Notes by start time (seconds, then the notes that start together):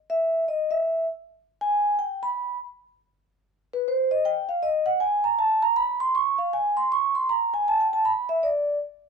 0.10 E5
0.48 D#5
0.71 E5
1.61 G#5
1.99 G5
2.23 B5
3.73 B4
3.88 C5
4.11 D#5
4.25 G5
4.49 F5
4.63 D#5
4.86 F#5
5.00 G#5
5.24 A#5
5.39 A5
5.63 A#5
5.76 B5
6.00 C6
6.15 C#6
6.38 F5
6.53 G#5
6.77 C6
6.92 C#6
7.15 C6
7.29 A#5
7.54 G#5
7.68 A5
7.80 G5
7.93 A5
8.05 B5
8.29 E5
8.43 D5